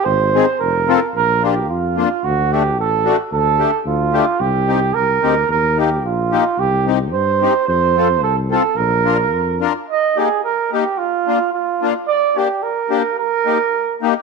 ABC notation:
X:1
M:2/4
L:1/16
Q:"Swing" 1/4=110
K:Fm
V:1 name="Flugelhorn"
c4 B4 | [K:Bb] B2 G2 F4 | ^F2 G2 A4 | A4 F4 |
G4 B4 | B2 G2 F4 | G2 z2 c4 | c4 A2 A2 |
B6 z2 | [K:Eb] e2 A2 B2 G2 | F4 F3 z | d2 G2 B4 |
B6 z2 |]
V:2 name="Accordion"
z2 [CEA]2 z2 [CF=A]2 | [K:Bb] z2 [B,DF]2 z2 [B,DF]2 | z2 [A,D^F]2 z2 [A,DF]2 | z2 [A,DG]2 z2 [A,DG]2 |
z2 [CEG]2 z2 [CEG]2 | z2 [B,EG]2 z2 [B,EG]2 | z2 [CEG]2 z2 [CEG]2 | z2 [CFA]2 z2 [CFA]2 |
z2 [DFB]2 z2 [DFB]2 | [K:Eb] z2 [B,EG]2 z2 [B,EG]2 | z2 [B,DF]2 z2 [B,DF]2 | z2 [B,DG]2 z2 [B,DG]2 |
z2 [B,EG]2 z2 [B,EG]2 |]
V:3 name="Tuba" clef=bass
A,,,4 F,,,4 | [K:Bb] B,,,4 F,,4 | D,,4 A,,,4 | D,,4 D,,4 |
C,,4 C,,2 D,,2 | E,,4 B,,,4 | C,,4 G,,4 | F,,4 C,,4 |
B,,,4 F,,4 | [K:Eb] z8 | z8 | z8 |
z8 |]